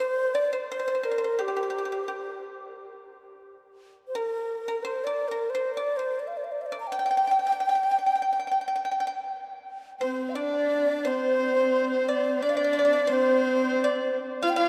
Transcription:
0.00 C5
0.35 D5
0.53 C5
0.70 C5
0.79 C5
0.88 C5
0.95 C5
1.03 A#4 C5
1.11 C5
1.18 C5
1.24 C5
1.39 G4
1.48 G4
1.56 G4
1.63 G4
1.70 G4
1.78 G4
1.85 G4
1.92 G4
2.08 G4
4.08 C5
4.15 A#4
4.47 G4
4.68 A#4
4.83 C5
5.04 D5
5.28 A#4
5.50 C5
5.55 C5
5.74 D5
5.97 C5
6.19 D5
6.27 F5
6.37 D5
6.44 F5
6.52 D5
6.61 F5
6.66 D5
6.72 D5
6.80 A#5
6.87 G5
6.92 G5
6.99 G5
7.06 G5
7.11 G5
7.17 G5
7.27 G5
7.39 G5
7.47 G5
7.52 G5
7.60 G5
7.69 G5
7.75 G5
7.83 G5
7.91 G5
7.99 G5
8.06 G5
8.15 G5
8.22 G5
8.33 G5
8.40 G5
8.47 G5
8.51 G5
8.61 G5
8.68 G5
8.76 G5
8.85 G5
8.91 G5
9.00 G5
9.07 G5
10.00 C4 C5
10.29 F5
10.35 D4 D5
11.05 C4 C5
12.09 D5
12.41 D4 D5
12.49 D5 F5
12.57 D5
12.64 D5
12.73 D5
12.79 D5
12.85 D5
12.93 D5
13.07 C4 C5
13.12 C5
13.84 D5
14.42 F4 F5
14.47 F5 G5
14.55 F4 F5

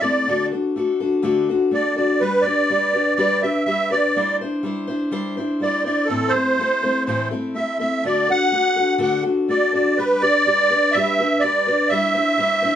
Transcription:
0.00 A3 C4 E4 A4 D5
0.27 D3 A3 D4 F#4 A4
0.52 D4 F#4 A4
0.76 A3 D4 F#4 A4
1.00 D4 F#4 A4
1.22 D3 A3 D4 F#4 A4
1.49 D4 F#4 A4
1.71 A3 D4 F#4 A4 D5
1.96 D4 F#4 A4 D5
2.20 G3 D4 G4 B4
2.42 B4 D5
2.46 D4 G4
2.70 G3 D4 G4 B4
2.93 D4 G4 B4
3.15 G3 D4 G4 D5
3.19 B4
3.42 D4 G4 B4 E5
3.65 G3 D4 G4 B4 E5
3.90 D4 G4 B4 D5
4.16 G3 D4 E4 C5
4.41 D4 E4 C5
4.63 G3 D4 E4 C5
4.87 D4 E4 C5
5.11 G3 D4 E4 C5
5.37 D4 E4 C5
5.60 G3 D4 E4 C5 D5
5.84 D4 E4 C5 D5
6.05 A4
6.09 A2 E3 A3 C4 E4 A4
6.29 C5
6.34 A3 C4 E4 A4
6.59 A3 C4 E4 A4
6.83 A3 C4 E4 A4
7.05 A2 E3 A3 C4 E4 A4 C5
7.31 A3 C4 E4 A4
7.55 A3 C4 E4 A4 E5
7.79 A3 C4 E4 A4 E5
8.04 D3 A3 D4 F#4 A4 D5
8.28 D4 F#4 A4 F#5
8.52 A3 D4 F#4 A4
8.76 D4 F#4 A4
8.98 D3 A3 D4 F#4 A4 F#5
9.23 D4 F#4 A4
9.48 A3 D4 F#4 A4 D5
9.72 D4 F#4 A4 D5
9.97 G3 D4 G4 B4
10.21 D4 G4 B4 D5
10.46 G3 D4 G4 B4
10.70 D4 G4 B4
10.92 G3 E5
10.96 D4 G4 B4
11.19 D4 G4 B4
11.40 G3 D5
11.44 D4 G4 B4
11.67 D4 G4 B4
11.89 G3 D4 E5
11.93 E4 C5
12.14 D4 E4 C5
12.38 G3 D4 E4 C5
12.62 D4 E4 C5

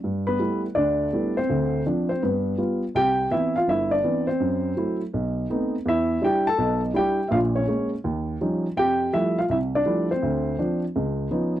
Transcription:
0.04 G2
0.27 B3 B4
0.39 G3 A3 B3 E4
0.75 D2 D3 D4 D5
1.13 G3 A3 B3 E4
1.37 C4 C5
1.49 D2 D3
1.86 F3 C4 D4
2.09 C4 C5
2.22 G2 B3 B4
2.58 G3 B3 F4
2.95 C2 G4 G5
3.31 E3 B3 C4 E4 E5
3.56 F4 F5
3.68 G1 E4 E5
3.91 D4 D5
4.04 E3 B3 C4
4.27 C4 C5
4.40 F#2
4.77 F#3 A3 E4
5.14 B1
5.50 A3 B3 C4 D#4
5.85 E2 E4 E5
6.21 G3 D4 E4 G4 G5
6.47 A4 A5
6.58 B1 B2
6.94 G3 D4 E4 G5
6.98 G4
7.28 A#1 A#2 E5 F5
7.34 F4
7.55 C#4 C#5
7.67 G#3 A#3 C#4
8.04 D#2
8.41 F3 G3 C#4 D#4
8.77 F2 G4 G5
9.13 F3 G3 A3 E4 E5
9.39 F4 F5
9.49 C2 E4 E5
9.75 D4 D5
9.86 F3 G3 A3 E4
10.11 C4 C5
10.23 D2
10.59 F3 C4 D4
10.96 C#2
11.31 F3 B3 C#4 D#4

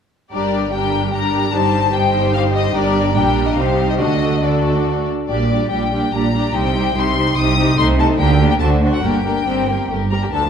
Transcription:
0.31 G1 G2 G3 D4 G4 A#4 D5
0.73 G3 D4 G4 A#4 G5
1.14 G3 D4 G4 A#4 A#5
1.54 G1 G2 G3 D#4 G4 C5 A5
1.93 G3 D#4 G4 C5 G5
2.34 F5
2.55 D#5
2.75 G1 G2 G3 D4 G4 A#4 D5
3.16 A#1 A#2 G3 D4 G4 A#4 G5
3.48 D#5
3.57 C2 C3 G3 D#4 G4 C5 F5
3.90 D#5
4.00 D2 D3 A3 D4 F#4 A4 D#5
4.43 A3 D4 F#4 A4 D5
5.29 A#1 A#2 G3 D4 G4 D5
5.51 G3 D4 G4 D5
5.71 A#1 A#2 G3 D4 G4 D5 G5
5.93 G3 D4 G4 D5
6.13 A#1 A#2 G3 D4 G4 D5 A#5
6.34 G3 D4 G4 D5
6.54 C2 C3 G3 D#4 G4 C5 G5
6.75 G3 D#4 G4 C5
6.96 C2 C3 G3 D#4 G4 C5 C6
7.17 G3 D#4 G4 C5
7.38 C2 C3 G3 D#4 G4 C5 D#6
7.58 G3 D#4 G4 C5
7.78 C2 C3 A3 D#4 C5 C6
7.99 A3 D#4 C5 A5
8.19 D2 D3 A#3 D4 G4 A#4 G5
8.40 A#3 D4 G4 A#4
8.50 G5
8.60 D2 D3 A3 D4 F#4 C5 A5
8.81 A3 D4 F#4 C5
8.93 F#5
9.02 G1 G2 A#3 D4 G4 A#4 G5
9.25 A#3 D4 G4 A#4
9.46 G1 G2 C4 G4 A#4
9.68 A#3 G4 A#4
9.89 G1 G2 A3 G4 A#4
10.10 G3 G4 A#4 A#5
10.22 G4 G5
10.32 D2 D3 D4 A4 A5
10.42 F3 F4

